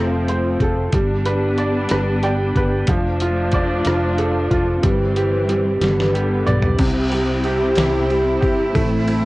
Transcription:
Already playing: fingered electric bass F1, upright piano F3 A4 C5, string section F3 A3 C4
0.28 upright piano C5, closed hi-hat
0.60 fingered electric bass F1, upright piano A4, kick, closed hi-hat
0.92 fingered electric bass G1, string section G3 B3 D4, upright piano G3, kick, closed hi-hat
1.25 upright piano B4, closed hi-hat
1.58 upright piano D5, closed hi-hat
1.89 fingered electric bass G1, upright piano B4, cross-stick, closed hi-hat
2.23 upright piano D5 G5, cross-stick, closed hi-hat
2.56 fingered electric bass G1, upright piano B4, kick, closed hi-hat
2.85 fingered electric bass F1, string section F3 A3 D4, upright piano F3, kick, closed hi-hat
3.20 upright piano F4, closed hi-hat
3.52 upright piano D5, kick, closed hi-hat
3.85 fingered electric bass F1, upright piano F4, cross-stick, closed hi-hat
4.18 upright piano A4, closed hi-hat
4.51 fingered electric bass F1, upright piano F4, kick, closed hi-hat
4.82 fingered electric bass G1, string section E3 G3 C4, upright piano G3, kick, closed hi-hat
5.16 upright piano G4, closed hi-hat
5.49 upright piano G3, closed hi-hat
5.81 fingered electric bass G1, string section D3 G3 B3, upright piano G3, snare, closed hi-hat
6.00 snare
6.14 upright piano G4, closed hi-hat
6.46 fingered electric bass B1, upright piano D5, closed hi-hat, mid tom
6.62 floor tom
6.79 fingered electric bass C2, upright piano C3, string section C3 C4 E4 G4, kick, crash, ride
7.12 upright piano G3, ride
7.44 upright piano G4, ride
7.75 fingered electric bass C2, upright piano E4, snare, ride
8.10 upright piano G3, ride
8.41 fingered electric bass G1, upright piano G4, kick, ride
8.74 fingered electric bass A1, string section A3 C4, upright piano A3, kick, ride
9.08 upright piano E4, ride

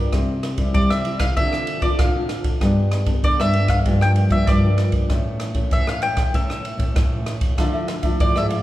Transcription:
0.12 nylon-string guitar C3 G3 C4 E4, kick, cross-stick, ride
0.43 cross-stick, ride
0.58 nylon-string guitar G3 C4 E4, kick, ride
0.74 nylon-string guitar G3, mandolin D5, kick, ride
0.90 nylon-string guitar C3, mandolin E5, cross-stick
1.05 nylon-string guitar G3 C4 E4, ride
1.20 mandolin F5, kick, cross-stick, ride
1.37 nylon-string guitar D3 C4 F4 A4, mandolin E5, kick, ride
1.53 cross-stick
1.67 ride
1.80 nylon-string guitar D3 C4 F4 A4, mandolin D5, kick, ride
1.99 nylon-string guitar A2 D3, mandolin F5, kick, cross-stick, ride
2.16 nylon-string guitar C4 F4 A4
2.29 cross-stick, ride
2.44 kick, ride
2.61 nylon-string guitar G2 G3 B3 D4 A4, kick, cross-stick, ride
2.92 cross-stick, ride
3.06 nylon-string guitar B3 D4 A4, kick, ride
3.23 nylon-string guitar D3, mandolin D5, kick, ride
3.40 nylon-string guitar G2, mandolin E5, cross-stick
3.53 nylon-string guitar B3 D4 A4, ride
3.68 mandolin F5, kick, cross-stick, ride
3.85 nylon-string guitar G2 F3 A#3 D4, kick, ride
4.01 mandolin G5, cross-stick
4.16 ride
4.29 nylon-string guitar G2 F3 A#3 D4, mandolin E5, kick, ride
4.47 nylon-string guitar G2 D3, mandolin D5, kick, cross-stick, ride
4.63 nylon-string guitar F3 A#3 D4
4.78 cross-stick, ride
4.92 kick, ride
5.09 nylon-string guitar A2 E3 A3 C#4, kick, cross-stick, ride
5.40 cross-stick, ride
5.54 nylon-string guitar E3 A3 C#4, kick, ride
5.71 nylon-string guitar E3, mandolin E5, kick, ride
5.87 nylon-string guitar A2, mandolin F5, cross-stick
6.02 nylon-string guitar E3 A3 C#4, mandolin G5, ride
6.17 kick, cross-stick, ride
6.34 nylon-string guitar A2 E3 A3 C#4, mandolin E5, kick, ride
6.50 cross-stick
6.65 ride
6.78 nylon-string guitar A2 E3 A3 C#4, kick, ride
6.96 nylon-string guitar A2 E3, kick, cross-stick, ride
7.13 nylon-string guitar E3 A3 C#4
7.26 cross-stick, ride
7.41 kick, ride
7.58 nylon-string guitar D3 F3 A3 E4, cavaquinho F4 A4 D5 E5, kick, cross-stick, ride
7.74 cavaquinho A4 D5 E5
7.88 cross-stick, ride
8.03 nylon-string guitar F3 A3 E4, cavaquinho A4 D5 E5, kick, ride
8.20 nylon-string guitar A2, mandolin D5, muted cavaquinho stroke, kick, ride
8.36 nylon-string guitar G#2, cavaquinho A4 D5 E5, mandolin E5, cross-stick
8.50 nylon-string guitar F3 A3 E4, cavaquinho F4 A4 D5 E5, ride

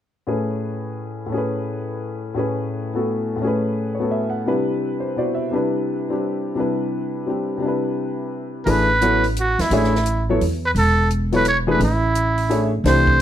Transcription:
0.27 grand piano A2 A3 C#4 G#4 B4
1.26 grand piano A2 A3
1.32 grand piano C#4 G#4
1.38 grand piano B4
2.34 grand piano A2 A3 C#4 G#4
2.39 grand piano B4
2.94 grand piano A3 B3 F#4 A4
3.36 grand piano A2 A3
3.42 grand piano C#4 G#4
3.47 grand piano B4
3.95 grand piano C#5
3.99 grand piano A3 B3 F#4 A4
4.11 grand piano E5
4.30 grand piano F#5
4.46 grand piano C3 G3 D4 E4 B4
5.00 grand piano C5
5.16 grand piano B2 E4 F#4 C5 D5
5.35 grand piano E5
5.51 grand piano C3 G3 D4 E4
5.55 grand piano B4
6.09 grand piano G3 C4 D4 G4
6.55 grand piano C3 G3 D4 E4
6.60 grand piano B4
7.26 grand piano G3 C4 D4 G4
7.57 grand piano C3 G3
7.62 grand piano D4 E4
7.68 grand piano B4
8.65 upright bass A1, grand piano E3 A3 D4 G#4 B4, muted trumpet A#4, open hi-hat
8.71 muted trumpet B4
9.01 grand piano F#3 B3 E4 A4 C#5, closed hi-hat
9.24 open hi-hat
9.37 muted trumpet F#4, closed hi-hat
9.59 upright bass E2, muted trumpet E4, snare, open hi-hat
9.70 upright bass A1, grand piano A3 D4 G#4 C#5 E5, open hi-hat
9.76 muted trumpet E4
9.84 snare
9.95 snare
10.06 closed hi-hat
10.29 grand piano F#3 B3 E4 A4 C#5
10.41 upright bass E2, open hi-hat
10.66 muted trumpet B4
10.75 upright bass E1, muted trumpet A4, open hi-hat
11.11 closed hi-hat
11.32 grand piano F#3 B3 E4 A4 C#5, muted trumpet B4, open hi-hat
11.45 muted trumpet C#5, closed hi-hat
11.67 grand piano E3 A3 D4 G#4 B4, muted trumpet B4
11.80 upright bass A1, muted trumpet E4, open hi-hat
12.15 closed hi-hat
12.38 open hi-hat
12.49 grand piano A3 D4 G#4 C#5 E5, open hi-hat
12.84 upright bass C2, grand piano E3 A3 D4 G4 C5, muted trumpet C5, snare, open hi-hat
13.07 kick

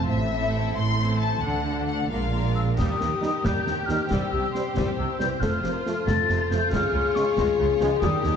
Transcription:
Already playing: violin section F4 C5 A5
0.09 double bass section A1, cello section A2, violin section E5
0.33 viola section A3 C4, violin section E4 A4
0.75 double bass section A1, cello section A2, violin section C6
0.98 viola section A3 C4, violin section E4 A4
1.19 violin section A5
1.42 double bass section D2, cello section D3, viola section A3 D4, violin section D4 A4 F#5
1.64 viola section A3 D4, violin section D4 A4
1.87 violin section F#5
2.09 double bass section A#1, cello section A#2, viola section G#3 D4, violin section F4 A#4 F5, flute section C6
2.33 viola section G#3 D4, violin section F4 A#4
2.55 flute section E6
2.77 cello section D#2, double bass section D#2, viola section G3, french horn section G4, violin section G4 A#4, flute section D#6, concert bass drum, snare, crash
3.00 cello section D#2, double bass section D#2, viola section D#3, snare
3.21 trombone section G3 D#4, snare
3.44 cello section D#2, double bass section D#2, viola section G3, flute section G6, concert bass drum, snare
3.66 double bass section D#2, cello section D#2, viola section D#3, snare
3.87 cello section D#2, double bass section D#2, viola section D#3, trombone section G3 D#4, flute section F6, snare
4.08 cello section C2, double bass section C2, viola section G3, french horn section G4, violin section C5, flute section E6, concert bass drum, snare
4.32 double bass section C2, cello section C2, viola section C3
4.52 trombone section G3 C4, flute section C6, snare
4.76 cello section C2, double bass section C2, viola section G3, flute section E6, concert bass drum, snare
4.97 cello section C2, double bass section C2, viola section C3
5.18 cello section C2, double bass section C2, viola section E3, trombone section G3 C4, flute section G6, snare
5.40 double bass section F1, cello section F2, viola section A3, violin section F4, french horn section A4, flute section F6, concert bass drum, snare
5.64 double bass section F1, cello section F2, viola section C3, french horn section A#4, snare
5.86 trombone section F3 A3, french horn section A4, snare
6.06 double bass section F1, cello section F2, viola section A3, flute section A6, concert bass drum, snare
6.29 double bass section F1, cello section F2, viola section C3, snare
6.50 double bass section F1, cello section F2, viola section F3, trombone section F3 A3, flute section G6, snare
6.71 double bass section C#2, cello section C#2, viola section G#3, french horn section G#4, violin section C#5, flute section F6, concert bass drum, snare
6.94 double bass section C#2, cello section C#2, viola section C#3
7.15 trombone section C#3 G#3, flute section C#6, snare
7.36 double bass section C#2, cello section C#2, viola section G#3, flute section C#6, concert bass drum, snare
7.59 cello section C#2, double bass section C#2, viola section C#3
7.81 cello section C#2, double bass section C#2, trombone section C#3 G#3, viola section F3, snare
8.01 cello section D#2, double bass section D#2, trombone section D#3 G3, viola section G3, violin section G4 A#4, french horn section G4, flute section D#6, concert bass drum, snare, crash
8.24 cello section D#2, double bass section D#2, viola section D#3, french horn section G#4, snare

